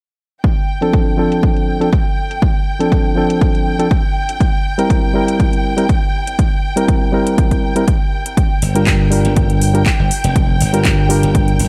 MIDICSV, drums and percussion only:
0, 0, Header, 1, 2, 480
1, 0, Start_track
1, 0, Key_signature, -1, "minor"
1, 0, Tempo, 495868
1, 425, Time_signature, 4, 2, 24, 8
1, 11309, End_track
2, 0, Start_track
2, 0, Title_t, "Drums"
2, 426, Note_on_c, 9, 36, 107
2, 427, Note_on_c, 9, 42, 60
2, 522, Note_off_c, 9, 36, 0
2, 524, Note_off_c, 9, 42, 0
2, 795, Note_on_c, 9, 42, 49
2, 892, Note_off_c, 9, 42, 0
2, 905, Note_on_c, 9, 36, 101
2, 907, Note_on_c, 9, 42, 59
2, 1002, Note_off_c, 9, 36, 0
2, 1004, Note_off_c, 9, 42, 0
2, 1276, Note_on_c, 9, 42, 50
2, 1373, Note_off_c, 9, 42, 0
2, 1385, Note_on_c, 9, 36, 108
2, 1388, Note_on_c, 9, 42, 61
2, 1482, Note_off_c, 9, 36, 0
2, 1484, Note_off_c, 9, 42, 0
2, 1515, Note_on_c, 9, 42, 34
2, 1612, Note_off_c, 9, 42, 0
2, 1756, Note_on_c, 9, 42, 48
2, 1853, Note_off_c, 9, 42, 0
2, 1865, Note_on_c, 9, 36, 104
2, 1867, Note_on_c, 9, 42, 58
2, 1962, Note_off_c, 9, 36, 0
2, 1964, Note_off_c, 9, 42, 0
2, 2235, Note_on_c, 9, 42, 46
2, 2332, Note_off_c, 9, 42, 0
2, 2345, Note_on_c, 9, 36, 114
2, 2345, Note_on_c, 9, 42, 60
2, 2441, Note_off_c, 9, 36, 0
2, 2442, Note_off_c, 9, 42, 0
2, 2715, Note_on_c, 9, 42, 46
2, 2812, Note_off_c, 9, 42, 0
2, 2825, Note_on_c, 9, 36, 102
2, 2829, Note_on_c, 9, 42, 58
2, 2922, Note_off_c, 9, 36, 0
2, 2925, Note_off_c, 9, 42, 0
2, 3195, Note_on_c, 9, 42, 49
2, 3292, Note_off_c, 9, 42, 0
2, 3305, Note_on_c, 9, 36, 108
2, 3306, Note_on_c, 9, 42, 59
2, 3402, Note_off_c, 9, 36, 0
2, 3403, Note_off_c, 9, 42, 0
2, 3435, Note_on_c, 9, 42, 32
2, 3532, Note_off_c, 9, 42, 0
2, 3674, Note_on_c, 9, 42, 45
2, 3770, Note_off_c, 9, 42, 0
2, 3784, Note_on_c, 9, 36, 111
2, 3784, Note_on_c, 9, 42, 57
2, 3881, Note_off_c, 9, 36, 0
2, 3881, Note_off_c, 9, 42, 0
2, 4152, Note_on_c, 9, 42, 45
2, 4249, Note_off_c, 9, 42, 0
2, 4264, Note_on_c, 9, 36, 113
2, 4267, Note_on_c, 9, 42, 57
2, 4361, Note_off_c, 9, 36, 0
2, 4363, Note_off_c, 9, 42, 0
2, 4634, Note_on_c, 9, 42, 44
2, 4731, Note_off_c, 9, 42, 0
2, 4744, Note_on_c, 9, 36, 105
2, 4746, Note_on_c, 9, 42, 57
2, 4840, Note_off_c, 9, 36, 0
2, 4842, Note_off_c, 9, 42, 0
2, 5114, Note_on_c, 9, 42, 48
2, 5211, Note_off_c, 9, 42, 0
2, 5224, Note_on_c, 9, 36, 112
2, 5226, Note_on_c, 9, 42, 55
2, 5321, Note_off_c, 9, 36, 0
2, 5323, Note_off_c, 9, 42, 0
2, 5354, Note_on_c, 9, 42, 30
2, 5451, Note_off_c, 9, 42, 0
2, 5593, Note_on_c, 9, 42, 44
2, 5690, Note_off_c, 9, 42, 0
2, 5704, Note_on_c, 9, 36, 111
2, 5705, Note_on_c, 9, 42, 55
2, 5801, Note_off_c, 9, 36, 0
2, 5802, Note_off_c, 9, 42, 0
2, 6073, Note_on_c, 9, 42, 44
2, 6170, Note_off_c, 9, 42, 0
2, 6184, Note_on_c, 9, 36, 114
2, 6185, Note_on_c, 9, 42, 55
2, 6280, Note_off_c, 9, 36, 0
2, 6281, Note_off_c, 9, 42, 0
2, 6553, Note_on_c, 9, 42, 45
2, 6650, Note_off_c, 9, 42, 0
2, 6664, Note_on_c, 9, 36, 105
2, 6665, Note_on_c, 9, 42, 58
2, 6761, Note_off_c, 9, 36, 0
2, 6762, Note_off_c, 9, 42, 0
2, 7034, Note_on_c, 9, 42, 47
2, 7131, Note_off_c, 9, 42, 0
2, 7144, Note_on_c, 9, 36, 112
2, 7145, Note_on_c, 9, 42, 53
2, 7241, Note_off_c, 9, 36, 0
2, 7242, Note_off_c, 9, 42, 0
2, 7272, Note_on_c, 9, 36, 53
2, 7273, Note_on_c, 9, 42, 30
2, 7369, Note_off_c, 9, 36, 0
2, 7370, Note_off_c, 9, 42, 0
2, 7511, Note_on_c, 9, 42, 44
2, 7608, Note_off_c, 9, 42, 0
2, 7624, Note_on_c, 9, 36, 118
2, 7625, Note_on_c, 9, 42, 54
2, 7721, Note_off_c, 9, 36, 0
2, 7722, Note_off_c, 9, 42, 0
2, 7994, Note_on_c, 9, 42, 41
2, 8091, Note_off_c, 9, 42, 0
2, 8105, Note_on_c, 9, 36, 108
2, 8107, Note_on_c, 9, 42, 58
2, 8201, Note_off_c, 9, 36, 0
2, 8203, Note_off_c, 9, 42, 0
2, 8345, Note_on_c, 9, 46, 97
2, 8442, Note_off_c, 9, 46, 0
2, 8475, Note_on_c, 9, 42, 46
2, 8571, Note_off_c, 9, 42, 0
2, 8584, Note_on_c, 9, 39, 104
2, 8585, Note_on_c, 9, 36, 102
2, 8585, Note_on_c, 9, 42, 60
2, 8681, Note_off_c, 9, 39, 0
2, 8682, Note_off_c, 9, 36, 0
2, 8682, Note_off_c, 9, 42, 0
2, 8825, Note_on_c, 9, 46, 91
2, 8921, Note_off_c, 9, 46, 0
2, 8952, Note_on_c, 9, 42, 46
2, 9049, Note_off_c, 9, 42, 0
2, 9065, Note_on_c, 9, 42, 56
2, 9066, Note_on_c, 9, 36, 110
2, 9162, Note_off_c, 9, 36, 0
2, 9162, Note_off_c, 9, 42, 0
2, 9194, Note_on_c, 9, 42, 33
2, 9291, Note_off_c, 9, 42, 0
2, 9307, Note_on_c, 9, 46, 93
2, 9404, Note_off_c, 9, 46, 0
2, 9436, Note_on_c, 9, 42, 43
2, 9533, Note_off_c, 9, 42, 0
2, 9545, Note_on_c, 9, 36, 105
2, 9545, Note_on_c, 9, 39, 102
2, 9547, Note_on_c, 9, 42, 58
2, 9642, Note_off_c, 9, 36, 0
2, 9642, Note_off_c, 9, 39, 0
2, 9643, Note_off_c, 9, 42, 0
2, 9786, Note_on_c, 9, 46, 96
2, 9883, Note_off_c, 9, 46, 0
2, 9913, Note_on_c, 9, 42, 44
2, 10010, Note_off_c, 9, 42, 0
2, 10025, Note_on_c, 9, 36, 109
2, 10026, Note_on_c, 9, 42, 62
2, 10122, Note_off_c, 9, 36, 0
2, 10123, Note_off_c, 9, 42, 0
2, 10266, Note_on_c, 9, 46, 97
2, 10363, Note_off_c, 9, 46, 0
2, 10393, Note_on_c, 9, 42, 48
2, 10490, Note_off_c, 9, 42, 0
2, 10502, Note_on_c, 9, 39, 106
2, 10504, Note_on_c, 9, 42, 61
2, 10505, Note_on_c, 9, 36, 104
2, 10599, Note_off_c, 9, 39, 0
2, 10600, Note_off_c, 9, 42, 0
2, 10601, Note_off_c, 9, 36, 0
2, 10744, Note_on_c, 9, 46, 86
2, 10841, Note_off_c, 9, 46, 0
2, 10873, Note_on_c, 9, 42, 50
2, 10969, Note_off_c, 9, 42, 0
2, 10984, Note_on_c, 9, 36, 112
2, 10985, Note_on_c, 9, 42, 59
2, 11081, Note_off_c, 9, 36, 0
2, 11082, Note_off_c, 9, 42, 0
2, 11113, Note_on_c, 9, 42, 33
2, 11209, Note_off_c, 9, 42, 0
2, 11223, Note_on_c, 9, 46, 88
2, 11309, Note_off_c, 9, 46, 0
2, 11309, End_track
0, 0, End_of_file